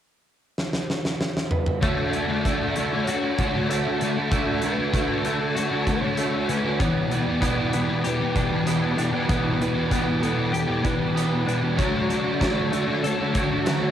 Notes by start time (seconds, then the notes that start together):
0.58 snare
0.73 snare
0.90 snare
1.05 snare
1.21 snare
1.37 snare
1.51 B4, mid tom
1.66 mid tom
1.81 D3 A3 D4 F#4 C#5, kick, closed hi-hat
2.11 D3 D5, closed hi-hat
2.15 A3 D4 F#4
2.30 A3 D4 F#4
2.40 D5
2.45 D3 A3 D4 F#4, kick, closed hi-hat
2.62 A3 D4 F#4
2.76 D3 A3 F#4, closed hi-hat
2.80 D4
2.93 A3 D4
3.04 D3 F#4 C#5, closed hi-hat
3.09 A3 D4
3.22 A3 D4 F#4
3.38 D3 A3 D4 F#4, kick, closed hi-hat
3.53 A3 D4 F#4
3.71 D3 A3 D4 F#4, closed hi-hat
4.01 D3 A3 D4 F#4, closed hi-hat
4.16 A3 D4 F#4
4.31 D3 A3 D4 F#4, kick, closed hi-hat
4.62 D3 A3 D4 F#4, closed hi-hat
4.66 B4
4.77 A3 D4 F#4
4.92 D3 A3 D4 F#4, kick, closed hi-hat
5.09 A3 D4 F#4
5.24 D3 A3 D4 F#4 A4, closed hi-hat
5.39 A3 D4
5.55 D3 A3 D4 F#4 A4, closed hi-hat
5.71 A3 D4 F#4
5.87 D3 A3 D4 F#4 C#5, kick, closed hi-hat
6.03 A3 D4 F#4
6.17 D3 A3 D4 F#4, closed hi-hat
6.48 D3 A3 C#4 D4 F#4 B4, closed hi-hat
6.65 A3 D4 F#4
6.78 E2 B2 E3 G3 B3 G4 C#5, kick, closed hi-hat
7.11 E2 B2 E3 G3 B3 G4 D5, closed hi-hat
7.24 E3 G3 B3 G4
7.30 B2
7.39 E2 B2 E3 G3 B3 G4 D5, kick, closed hi-hat
7.45 E3
7.56 E3 G3 B3 G4
7.72 E2 B2 E3 G3 B3 G4, closed hi-hat
7.88 B2 E3
8.04 E2 B2 E3 G4 B4, closed hi-hat
8.18 E3 G3 B3 G4
8.22 B2
8.34 E2 B2 E3 G3 B3 D4 G4, kick, closed hi-hat
8.50 B2 E3 G3 B3 G4
8.66 E2 B2 E3 G3 B3 G4, closed hi-hat
8.96 E2 B2 E3 D4, closed hi-hat
9.00 G3 B3 G4
9.11 B2 E3 G4
9.15 E3 G3 B3
9.29 E2 B2 E3 G3 B3 G4, kick, closed hi-hat
9.58 E2 B2 E3 G3 B3 B4, closed hi-hat
9.63 G4
9.76 B2 E3 G3 B3 G4
9.91 E2 B2 E3 G3 B3 G4, kick, closed hi-hat
10.07 E3 G3 B3 G4
10.21 E2 B2 E3 G3 B3 G4 A4, closed hi-hat
10.35 B2 E3
10.51 E2 B2 E3 G4 A4, closed hi-hat
10.68 B2 E3 G3 B3 G4
10.82 E2 B2 E3 G3 B3 D4 G4 B4, kick, closed hi-hat
10.97 B2 E3 G3 B3 G4
11.01 E3
11.14 E2 B2 E3 G3 B3 G4, closed hi-hat
11.44 E2 B2 E3 G3 B3 D4 B4
11.48 G4, closed hi-hat
11.61 B2 E3 G3 B3 G4
11.76 D3 F#3 A3 D4 F#4 C#5, kick, closed hi-hat
11.82 D3 A3 F#4
12.07 D3 A3 D4 F#4 D5, closed hi-hat
12.24 A3 D4 F#4
12.39 D3 F#3 A3 D4 F#4 D5, kick, snare, closed hi-hat
12.55 A3 D4 F#4
12.72 D3 A3 D4 F#4, closed hi-hat
12.87 A3 D4
13.03 D3 A3 D4 A4 C#5, closed hi-hat
13.21 A3 D4 F#4
13.35 D3 A3 D4 F#4, kick, closed hi-hat
13.51 A3 D4 F#4
13.66 D3 F#3 A3 D4 F#4, snare, closed hi-hat